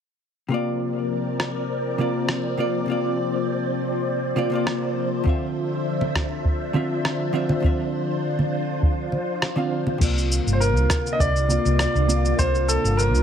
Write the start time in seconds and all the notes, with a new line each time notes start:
0.48 C3 F3 A#3 C4 F4 A#4 D5
0.54 D5
1.40 cross-stick
1.98 C3 A#3 F4 D5
2.29 cross-stick
2.57 C3 A#3 F4 D5
2.86 C3 A#3 C5
2.90 F4 D5
4.36 C3 A#3 F4 D5
4.50 C3 A#3 F4
4.55 D5
4.67 cross-stick
5.24 D3 C4 D4 F4 E5, kick
5.29 E5
6.01 high conga
6.15 kick, cross-stick
6.45 kick
6.73 D3 C4 F4 E5, high conga
7.05 cross-stick
7.33 D3 C4 F4 E5
7.49 high conga
7.60 D3 C4 F4, kick
7.66 E5
8.39 high conga
8.83 kick
9.12 high conga
9.42 cross-stick
9.56 D3 C4 F4 F5
9.87 high conga
9.98 C2 C3 D3 A#3 F4, kick, crash, shaker
10.04 D5
10.18 shaker
10.32 shaker
10.46 G1, shaker
10.53 C5
10.60 A#4, shaker
10.76 C2, shaker
10.90 kick, cross-stick, shaker
11.06 shaker
11.13 D#5
11.20 C2 D5, kick, shaker
11.36 shaker
11.48 C3 A#3 F4 D5, shaker
11.65 C2, shaker
11.79 D5, cross-stick, shaker
11.95 C2, shaker
12.07 C3 A#3 F4 D5, shaker
12.25 shaker
12.37 C2 C3 A#3 F4 C5, kick, shaker
12.42 D5
12.55 shaker
12.68 A4, shaker
12.84 G1, shaker
12.97 A#4, shaker
13.14 C2, shaker